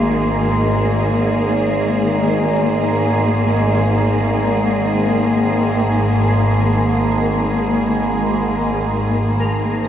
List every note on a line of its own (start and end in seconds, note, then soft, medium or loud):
0.00 9.25 G#1 medium
0.00 9.26 G#2 medium
0.00 9.27 D#3 medium
0.00 9.88 A#3 medium
0.00 9.88 G#4 medium
9.26 9.88 G#1 medium
9.26 9.88 G#2 medium
9.26 9.88 D#3 medium
9.26 9.88 A#3 medium
9.26 9.88 A#4 medium